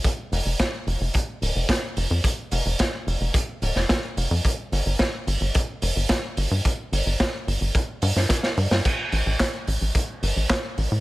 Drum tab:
CC |----------------|----------------|----------------|----------------|
HH |x-o-x-o-x-o-x-o-|x-o-x-o-x-o-x-o-|x-o-x-o-x-o-x-o-|x-o-x-o-x-o-x-o-|
CP |----------------|----------------|----------------|----------------|
SD |----o-------o---|----o------oo---|----o-------o---|----o------ooo-o|
BD |o---o---o---o---|o---o---o---o---|o---o---o---o---|o---o---o---o---|

CC |x---------------|
HH |x-o-x-o-x-o-x-o-|
CP |----x-------x---|
SD |----o-------o---|
BD |o---o---o---o---|